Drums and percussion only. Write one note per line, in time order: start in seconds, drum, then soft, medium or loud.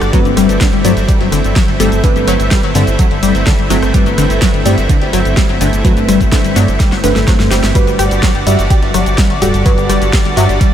0.02 cross-stick medium
0.02 snare medium
0.02 closed hi-hat soft
0.02 shaker soft
0.13 kick loud
0.13 closed hi-hat medium
0.13 shaker soft
0.25 closed hi-hat soft
0.25 shaker soft
0.37 cross-stick medium
0.37 closed hi-hat medium
0.37 open hi-hat loud
0.37 shaker medium
0.49 closed hi-hat soft
0.49 shaker soft
0.61 kick loud
0.61 snare loud
0.61 closed hi-hat medium
0.61 shaker soft
0.73 closed hi-hat soft
0.85 closed hi-hat medium
0.85 open hi-hat loud
0.85 shaker medium
0.97 snare medium
0.97 closed hi-hat soft
0.97 shaker soft
1.08 kick loud
1.08 closed hi-hat medium
1.08 shaker soft
1.21 snare medium
1.21 closed hi-hat soft
1.32 cross-stick medium
1.32 closed hi-hat medium
1.32 open hi-hat loud
1.32 shaker medium
1.44 closed hi-hat soft
1.44 shaker soft
1.56 kick loud
1.56 snare loud
1.56 closed hi-hat medium
1.56 shaker soft
1.68 snare medium
1.68 closed hi-hat soft
1.80 closed hi-hat medium
1.80 open hi-hat loud
1.80 shaker medium
1.92 closed hi-hat soft
1.92 shaker soft
2.04 kick loud
2.04 closed hi-hat medium
2.04 shaker soft
2.16 closed hi-hat soft
2.16 shaker soft
2.28 cross-stick medium
2.28 closed hi-hat medium
2.28 open hi-hat loud
2.28 shaker medium
2.40 closed hi-hat soft
2.40 shaker soft
2.51 kick loud
2.51 snare loud
2.51 closed hi-hat medium
2.51 shaker soft
2.63 closed hi-hat soft
2.75 snare soft
2.75 closed hi-hat medium
2.75 open hi-hat loud
2.75 shaker medium
2.87 closed hi-hat soft
2.87 shaker soft
2.99 kick loud
2.99 closed hi-hat loud
2.99 closed hi-hat medium
2.99 shaker soft
3.11 closed hi-hat soft
3.23 closed hi-hat medium
3.23 open hi-hat loud
3.23 shaker medium
3.35 snare medium
3.35 closed hi-hat soft
3.35 shaker soft
3.47 kick loud
3.47 snare loud
3.47 closed hi-hat medium
3.47 shaker soft
3.59 closed hi-hat soft
3.70 closed hi-hat medium
3.70 open hi-hat loud
3.70 shaker medium
3.82 cross-stick medium
3.82 snare soft
3.82 closed hi-hat soft
3.82 shaker soft
3.94 kick loud
3.94 closed hi-hat loud
3.94 closed hi-hat medium
3.94 shaker soft
4.06 closed hi-hat soft
4.06 shaker soft
4.18 cross-stick medium
4.18 closed hi-hat medium
4.18 open hi-hat loud
4.18 shaker medium
4.30 closed hi-hat soft
4.30 shaker soft
4.42 kick loud
4.42 snare loud
4.42 closed hi-hat loud
4.42 closed hi-hat medium
4.42 shaker soft
4.54 closed hi-hat soft
4.66 closed hi-hat medium
4.66 open hi-hat loud
4.66 shaker medium
4.78 snare medium
4.78 closed hi-hat soft
4.78 shaker soft
4.89 kick loud
4.89 closed hi-hat loud
4.89 closed hi-hat medium
4.89 shaker soft
5.02 snare medium
5.02 closed hi-hat soft
5.13 cross-stick medium
5.13 closed hi-hat medium
5.13 open hi-hat loud
5.13 shaker medium
5.25 closed hi-hat soft
5.25 shaker soft
5.37 kick loud
5.37 snare loud
5.37 closed hi-hat loud
5.37 closed hi-hat medium
5.37 shaker soft
5.49 snare medium
5.49 closed hi-hat soft
5.61 closed hi-hat medium
5.61 open hi-hat loud
5.61 shaker medium
5.73 closed hi-hat soft
5.73 shaker soft
5.85 kick loud
5.85 closed hi-hat medium
5.85 closed hi-hat loud
5.85 shaker soft
5.97 closed hi-hat soft
5.97 shaker soft
6.08 cross-stick medium
6.08 closed hi-hat medium
6.08 open hi-hat loud
6.08 shaker medium
6.21 kick medium
6.21 closed hi-hat soft
6.21 shaker soft
6.32 kick loud
6.32 snare loud
6.32 closed hi-hat medium
6.32 closed hi-hat loud
6.32 shaker soft
6.44 closed hi-hat soft
6.44 shaker soft
6.56 snare soft
6.56 closed hi-hat medium
6.56 open hi-hat medium
6.56 shaker medium
6.68 closed hi-hat soft
6.68 shaker soft
6.80 kick loud
6.80 snare medium
6.80 closed hi-hat medium
6.80 closed hi-hat loud
6.80 shaker soft
6.92 snare medium
6.92 closed hi-hat soft
7.04 snare loud
7.04 closed hi-hat medium
7.04 open hi-hat loud
7.04 shaker medium
7.16 snare medium
7.16 closed hi-hat soft
7.16 shaker soft
7.28 kick loud
7.28 snare loud
7.28 snare medium
7.28 closed hi-hat medium
7.28 shaker soft
7.40 snare medium
7.40 closed hi-hat soft
7.40 shaker soft
7.51 snare loud
7.51 closed hi-hat medium
7.51 open hi-hat loud
7.51 shaker medium
7.63 snare loud
7.63 snare medium
7.63 closed hi-hat medium
7.63 closed hi-hat soft
7.63 shaker soft
7.75 kick loud
7.75 closed hi-hat medium
7.75 closed hi-hat loud
7.75 shaker soft
7.87 closed hi-hat soft
7.87 shaker soft
7.99 cross-stick medium
7.99 closed hi-hat medium
7.99 open hi-hat loud
7.99 shaker medium
8.11 closed hi-hat soft
8.11 shaker soft
8.23 kick loud
8.23 snare loud
8.23 closed hi-hat medium
8.23 closed hi-hat loud
8.23 shaker soft
8.35 closed hi-hat soft
8.47 closed hi-hat medium
8.47 open hi-hat loud
8.47 shaker medium
8.59 snare medium
8.59 closed hi-hat soft
8.59 shaker soft
8.70 kick loud
8.70 closed hi-hat medium
8.70 closed hi-hat loud
8.70 shaker soft
8.83 snare medium
8.83 closed hi-hat soft
8.94 cross-stick medium
8.94 closed hi-hat medium
8.94 open hi-hat loud
8.94 shaker medium
9.06 closed hi-hat soft
9.06 shaker soft
9.18 kick loud
9.18 snare loud
9.18 closed hi-hat medium
9.18 shaker soft
9.30 snare medium
9.30 closed hi-hat soft
9.42 closed hi-hat medium
9.42 open hi-hat loud
9.42 shaker medium
9.54 closed hi-hat soft
9.54 shaker soft
9.66 kick loud
9.66 closed hi-hat loud
9.66 shaker soft
9.78 closed hi-hat soft
9.78 shaker soft
9.89 cross-stick medium
9.89 closed hi-hat medium
9.89 open hi-hat loud
9.89 shaker medium
10.02 closed hi-hat soft
10.02 shaker soft
10.13 kick loud
10.13 snare loud
10.13 closed hi-hat loud
10.13 closed hi-hat medium
10.13 shaker soft
10.25 closed hi-hat soft
10.37 snare soft
10.37 closed hi-hat medium
10.37 open hi-hat loud
10.37 shaker medium
10.49 closed hi-hat soft
10.49 shaker soft
10.61 kick loud
10.61 closed hi-hat medium
10.61 closed hi-hat loud
10.61 shaker soft